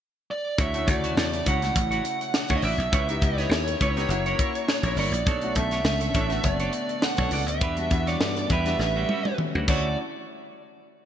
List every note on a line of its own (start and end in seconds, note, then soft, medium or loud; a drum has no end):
0.31 0.60 D5 medium
0.58 0.82 D2 medium
0.58 0.86 E4 medium
0.58 0.86 F#4 medium
0.58 0.86 C#5 medium
0.58 0.86 E5 medium
0.58 kick loud
0.58 closed hi-hat medium
0.74 0.86 A3 medium
0.74 0.86 C#4 medium
0.74 0.86 E4 medium
0.74 0.86 F#4 medium
0.74 closed hi-hat medium
0.87 1.11 D2 loud
0.87 1.52 C#3 medium
0.87 1.52 A3 medium
0.87 1.52 E4 medium
0.87 1.52 F#4 medium
0.87 1.48 D5 medium
0.87 kick medium
0.87 closed hi-hat medium
1.04 1.15 E4 soft
1.04 1.14 F#4 soft
1.04 1.14 C#5 medium
1.04 closed hi-hat soft
1.17 1.41 E2 medium
1.17 snare loud
1.34 muted clean electric guitar stroke soft
1.34 closed hi-hat soft
1.46 1.70 C#2 medium
1.46 1.61 E4 medium
1.46 1.62 F#4 medium
1.46 1.62 C#5 medium
1.46 1.74 F#5 medium
1.46 kick medium
1.46 closed hi-hat medium
1.62 2.63 A3 medium
1.62 2.63 C#4 medium
1.62 2.63 E4 medium
1.62 2.64 F#4 medium
1.62 muted clean electric guitar stroke soft
1.62 snare soft
1.62 closed hi-hat soft
1.76 2.00 A1 medium
1.76 2.57 F#5 medium
1.76 muted clean electric guitar stroke soft
1.76 kick medium
1.76 closed hi-hat medium
1.91 2.05 E4 medium
1.91 2.05 F#4 medium
1.91 2.04 C#5 medium
1.91 closed hi-hat soft
2.05 muted clean electric guitar stroke soft
2.05 closed hi-hat medium
2.21 muted clean electric guitar stroke soft
2.21 closed hi-hat soft
2.34 muted clean electric guitar stroke soft
2.34 snare medium
2.49 2.61 D2 medium
2.49 2.62 E4 medium
2.49 2.63 F#4 medium
2.49 2.63 C#5 medium
2.49 kick medium
2.49 closed hi-hat soft
2.57 2.63 D#5 medium
2.62 2.76 A1 medium
2.62 2.75 E4 medium
2.62 2.76 F#4 medium
2.62 2.76 D5 medium
2.62 3.24 E5 medium
2.62 open hi-hat medium
2.78 2.89 B1 medium
2.78 muted clean electric guitar stroke soft
2.78 closed hi-hat medium
2.92 3.17 C#2 loud
2.92 3.08 E4 medium
2.92 3.08 B4 medium
2.92 3.07 C#5 medium
2.92 kick loud
2.92 closed hi-hat medium
3.08 3.20 B3 medium
3.08 3.21 D#4 medium
3.08 3.21 E4 medium
3.08 3.21 G4 medium
3.08 muted clean electric guitar stroke medium
3.08 closed hi-hat medium
3.21 3.46 C#2 medium
3.21 3.86 B3 medium
3.21 3.86 D#4 medium
3.21 3.86 E4 medium
3.21 3.87 G4 medium
3.21 5.04 C#5 medium
3.21 muted clean electric guitar stroke soft
3.21 kick medium
3.21 closed hi-hat medium
3.38 3.49 E4 soft
3.38 3.49 B4 soft
3.38 3.48 D#5 medium
3.38 snare soft
3.38 closed hi-hat soft
3.49 3.74 D#2 medium
3.49 muted clean electric guitar stroke soft
3.49 snare loud
3.67 muted clean electric guitar stroke soft
3.67 closed hi-hat medium
3.81 4.05 C#2 medium
3.81 3.96 E4 medium
3.81 3.96 B4 medium
3.81 3.96 C#5 loud
3.81 kick medium
3.81 closed hi-hat medium
3.96 4.10 B3 medium
3.96 4.10 D#4 medium
3.96 4.09 E4 medium
3.96 4.07 E4 medium
3.96 4.10 G4 medium
3.96 4.07 B4 medium
3.96 4.07 C#5 medium
3.96 snare soft
3.96 closed hi-hat soft
4.08 4.33 F#1 loud
4.08 5.12 A#3 medium
4.08 5.13 C#4 medium
4.08 5.13 E4 medium
4.08 5.13 F#4 medium
4.08 muted clean electric guitar stroke soft
4.08 closed hi-hat medium
4.26 4.38 E4 medium
4.26 4.39 A#4 medium
4.26 4.39 C#5 medium
4.26 closed hi-hat soft
4.39 4.51 E4 medium
4.39 4.52 A#4 medium
4.39 4.52 C#5 medium
4.39 kick medium
4.39 closed hi-hat medium
4.55 muted clean electric guitar stroke soft
4.55 closed hi-hat soft
4.68 muted clean electric guitar stroke soft
4.68 snare loud
4.83 4.95 A#1 medium
4.83 4.96 E4 soft
4.83 4.95 A#4 medium
4.83 4.95 C#5 medium
4.83 closed hi-hat soft
4.96 5.10 G1 medium
4.96 5.13 E4 medium
4.96 5.13 A#4 medium
4.96 5.13 C#5 medium
4.96 5.57 D5 medium
4.96 open hi-hat medium
5.12 5.24 A#1 medium
5.12 muted clean electric guitar stroke soft
5.12 closed hi-hat medium
5.26 5.51 B1 loud
5.26 7.59 D3 medium
5.26 7.60 A3 medium
5.26 8.76 B3 medium
5.26 5.54 D4 medium
5.26 5.54 A4 medium
5.26 5.55 C#5 medium
5.26 kick loud
5.26 closed hi-hat medium
5.42 5.54 A3 medium
5.42 5.54 C#4 medium
5.42 5.55 D4 medium
5.42 5.55 F#4 medium
5.42 closed hi-hat soft
5.55 5.80 B1 medium
5.55 6.20 A3 medium
5.55 6.20 C#4 medium
5.55 6.20 D4 medium
5.55 6.21 A4 medium
5.55 6.45 E5 medium
5.55 kick medium
5.55 closed hi-hat medium
5.71 5.83 D4 soft
5.71 5.83 A4 soft
5.71 5.83 C#5 medium
5.71 snare soft
5.71 closed hi-hat soft
5.84 6.09 C#2 medium
5.84 snare loud
6.01 muted clean electric guitar stroke medium
6.01 closed hi-hat medium
6.14 6.39 A1 medium
6.14 6.30 D4 medium
6.14 6.31 A4 medium
6.14 6.30 C#5 medium
6.14 kick medium
6.14 closed hi-hat medium
6.30 7.31 A3 medium
6.30 7.31 B3 medium
6.30 7.32 D4 medium
6.30 7.32 F#4 medium
6.30 snare soft
6.30 closed hi-hat soft
6.43 6.68 F#1 medium
6.43 7.03 D5 medium
6.43 muted clean electric guitar stroke soft
6.43 kick medium
6.43 closed hi-hat medium
6.60 6.73 D4 medium
6.60 6.73 A4 medium
6.60 6.73 C#5 medium
6.60 closed hi-hat soft
6.73 muted clean electric guitar stroke soft
6.73 closed hi-hat medium
6.89 muted clean electric guitar stroke soft
6.89 closed hi-hat soft
7.02 7.48 F#5 medium
7.02 muted clean electric guitar stroke soft
7.02 snare loud
7.17 7.30 B1 medium
7.17 7.30 D4 medium
7.17 7.32 A4 medium
7.17 7.32 C#5 medium
7.17 kick medium
7.17 closed hi-hat soft
7.31 7.46 C#2 medium
7.31 7.44 D4 medium
7.31 7.45 A4 medium
7.31 7.45 D5 medium
7.31 open hi-hat medium
7.46 7.61 D2 medium
7.46 8.09 E5 medium
7.46 muted clean electric guitar stroke soft
7.46 closed hi-hat medium
7.61 7.86 E2 loud
7.61 8.78 E3 medium
7.61 9.66 G3 medium
7.61 7.77 D4 medium
7.61 8.79 D4 medium
7.61 8.79 F#4 medium
7.61 7.77 G4 medium
7.61 7.77 B4 medium
7.61 kick loud
7.61 closed hi-hat medium
7.77 7.89 G3 medium
7.77 7.89 B3 medium
7.77 7.90 D4 medium
7.77 7.90 F#4 medium
7.77 muted clean electric guitar stroke soft
7.77 closed hi-hat medium
7.91 8.15 E2 medium
7.91 8.55 G3 medium
7.91 8.55 B3 medium
7.91 8.56 D4 medium
7.91 8.56 F#4 medium
7.91 muted clean electric guitar stroke soft
7.91 kick medium
7.91 closed hi-hat medium
8.07 8.19 D4 soft
8.07 8.18 G4 soft
8.07 8.18 C#5 medium
8.07 8.47 D5 medium
8.07 snare soft
8.07 closed hi-hat soft
8.20 8.45 G2 medium
8.20 muted clean electric guitar stroke soft
8.20 snare loud
8.37 muted clean electric guitar stroke medium
8.37 closed hi-hat soft
8.50 8.74 E2 medium
8.50 8.66 D4 medium
8.50 8.66 G4 medium
8.50 8.65 B4 medium
8.50 9.35 E5 medium
8.50 kick medium
8.50 closed hi-hat medium
8.65 8.76 G3 medium
8.65 8.77 B3 medium
8.65 8.80 D4 medium
8.65 8.77 D4 soft
8.65 8.78 F#4 medium
8.65 8.77 G4 medium
8.65 8.77 B4 medium
8.65 snare soft
8.65 closed hi-hat soft
8.78 9.04 A1 loud
8.78 9.67 G3 medium
8.78 9.66 A3 medium
8.78 9.67 B3 medium
8.78 9.67 C#4 medium
8.78 9.66 C#4 medium
8.78 9.67 F#4 medium
8.78 muted clean electric guitar stroke soft
8.78 snare medium
8.96 9.08 G3 medium
8.96 9.09 C#4 medium
8.96 9.09 F#4 medium
9.09 9.21 G3 medium
9.09 9.22 C#4 medium
9.09 9.22 F#4 medium
9.09 high tom medium
9.25 muted clean electric guitar stroke soft
9.25 high tom medium
9.38 muted clean electric guitar stroke soft
9.38 mid tom medium
9.55 9.66 D2 medium
9.55 9.66 G3 soft
9.55 9.66 C#4 medium
9.55 9.66 F#4 medium
9.67 9.95 D2 medium
9.67 9.95 D3 medium
9.67 9.95 A3 medium
9.67 9.96 A3 medium
9.67 9.95 C#4 medium
9.67 9.96 C#4 medium
9.67 9.95 E4 medium
9.67 9.96 E4 medium
9.67 9.87 E4 medium
9.67 9.95 F#4 medium
9.67 9.96 F#4 medium
9.67 9.88 F#4 medium
9.67 9.88 C#5 medium
9.67 9.96 D5 medium
9.67 kick medium
9.67 crash medium